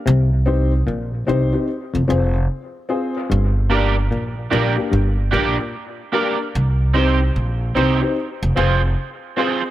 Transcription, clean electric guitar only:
X:1
M:4/4
L:1/16
Q:"Swing 16ths" 1/4=74
K:Gphr
V:1 name="Clean electric guitar"
z16 | z2 [DGBd] z3 [DGBd] z3 [DGBd] z3 [DGBd] z | z2 [CEGc] z3 [CEGc] z3 [CFAc] z3 [CFAc] z |]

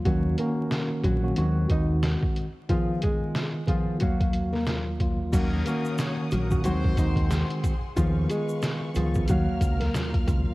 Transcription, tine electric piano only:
X:1
M:4/4
L:1/16
Q:"Swing 16ths" 1/4=91
K:Ebm
V:1 name="Tine electric piano"
[E,B,DG]2 [E,B,DG]4- [E,B,DG] [E,B,DG] [E,A,=CG]6 z2 | [E,CFA]6 [E,CFA]2 [E,,G,B,f]4 [E,,G,B,F]2 [E,,G,B,F]2 | [E,B,DG]2 [E,B,DG]4- [E,B,DG] [E,B,DG] [E,A,=CG]6 z2 | [E,CFA]6 [E,CFA]2 [E,,G,B,f]4 [E,,G,B,F]2 [E,,G,B,F]2 |]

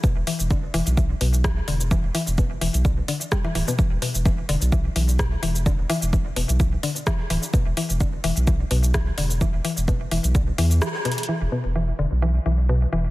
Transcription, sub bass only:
X:1
M:4/4
L:1/16
Q:"Swing 16ths" 1/4=128
K:Clyd
V:1 name="Sub bass" clef=bass
z E,,, z E,,,2 z E,,, B,,,2 z B,,,3 z E,,,2 | z E,,, z E,,,2 z E,,, B,,,2 z4 z D,,, z | z E,,, z E,,,2 z E,,, B,,,2 z B,,,3 z E,,,2 | z E,,, z E,,,2 z E,,, B,,,2 z4 z D,,, z |
z E,,, z E,,,2 z E,,, B,,,2 z B,,,3 z E,,,2 | z E,,, z E,,,2 z E,,, B,,,2 z E,,2 z4 | z E,,, z E,,,2 z E,,, B,,,2 z B,,,3 z E,,,2 |]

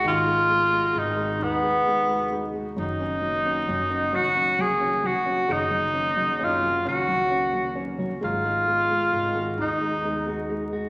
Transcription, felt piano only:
X:1
M:6/8
L:1/16
Q:3/8=44
K:F#
V:1 name="Felt piano" clef=bass
[D,G,D] G, G, G, G, G, D G, G, G, G, G, | F, C F, C F, C F, C F, C F, C | C, F, C F, C F, C F, C F, C F, | G, G, G, G, G, G, D G, G, G, G, G, |]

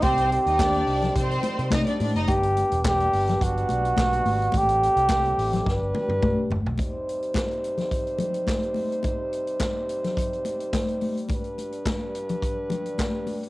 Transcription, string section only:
X:1
M:4/4
L:1/16
Q:1/4=106
K:Clyd
V:1 name="String section"
[Cc]2 z [_E_e] [Dd]4 [Cc]4 [Ee] [Dd] [Dd] [Ee] | z16 | z16 | z16 |
z16 | z16 |]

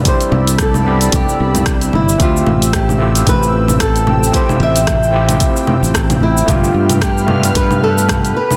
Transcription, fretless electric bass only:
X:1
M:4/4
L:1/16
Q:"Swing 16ths" 1/4=112
K:Ddor
V:1 name="Fretless electric bass" clef=bass
z2 C,,6 C,, z C,,4 G,,,2 | D,,2 A,,,6 A,,,8 | z2 A,,,6 z3 A,,,3 A,,,2 | G,,,2 G,,6 G,,6 z2 |]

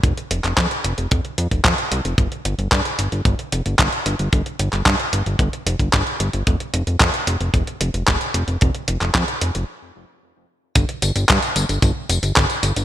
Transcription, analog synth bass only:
X:1
M:4/4
L:1/16
Q:1/4=112
K:Fmix
V:1 name="Analog synth bass" clef=bass
F,,, z F,,, F,,, F,, z F,,, F,,, F,,, z F,, F,,, F,, z C,, F,,, | G,,, z G,,, G,,, G,, z G,,, G,,, G,,, z F,,, G,,, G,,, z G,,, G,,, | G,,, z G,,, G,,, G,, z G,,, G,,, G,,, z F,,, G,,, G,,, z G,,, G,,, | F,,, z F,,, F,,, F,, z F,,, F,,, F,,, z F,,, F,,, F,,, z F,,, F,,, |
F,,, z F,,, F,,, F,, z F,,, F,,, z8 | G,,, z G,,, G,,, G,, z G,,, G,,, G,,, z F,,, G,,, G,,, z G,,, G,,, |]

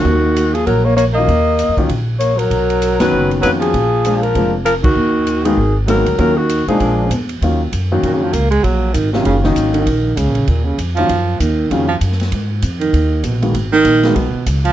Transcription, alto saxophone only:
X:1
M:4/4
L:1/8
Q:"Swing" 1/4=196
K:Ebm
V:1 name="Alto saxophone"
G3 A B d d e- | e4 z2 d B- | B3 =B2 z B A- | A3 B2 z B G- |
G3 A2 z B2 | B G2 E =D3 z | z8 | z8 |
z8 | z8 | z8 | z8 |]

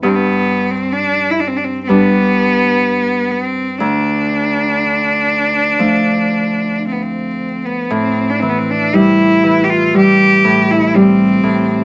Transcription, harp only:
X:1
M:4/4
L:1/8
Q:1/4=61
K:Am
V:1 name="Harp" clef=bass
G,,4 [G,DB]4 | D,,4 [F,A,D]4 | A,, E, G, E, G, A,, G, A,, |]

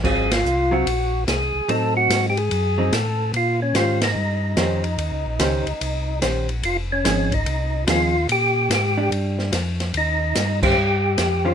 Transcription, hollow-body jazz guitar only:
X:1
M:4/4
L:1/8
Q:"Swing" 1/4=145
K:Ebmix
V:1 name="Hollow-body jazz guitar"
[_G,CF] z2 [G,CF] z4 | [^F,CE]3 z2 [F,CE] z2 | z2 [E,DGc] z3 [E,DGc] z | z2 [E,DGc] z3 [E,DGc] z |
z2 [F,CEA] z3 [F,CEA] z | z3 [=DG]3 z2 | z3 [E,DGc] z3 [E,DGc] |]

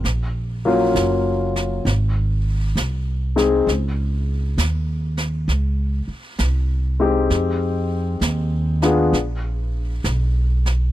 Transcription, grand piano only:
X:1
M:4/4
L:1/8
Q:"Swing" 1/4=66
K:Fphr
V:1 name="Grand piano"
z [G,B,DF] z4 z [A,CEA] | z6 z [A,CE=G]- | [A,CE=G]2 z [_C=DFA] z4 |]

